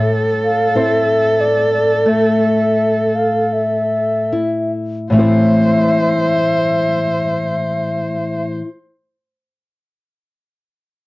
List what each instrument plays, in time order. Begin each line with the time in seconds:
Already playing: nylon-string guitar A2, cello A4, flute E5
0.44 flute F5
0.75 nylon-string guitar C4 E4 C5, flute E5
1.41 flute D5
1.74 flute D5
2.06 nylon-string guitar A3, flute E5
3.15 flute F5
3.53 flute E5
4.32 nylon-string guitar E4
5.10 nylon-string guitar A2 E3 A3, cello C5, flute E5
5.16 nylon-string guitar C4 E4 C5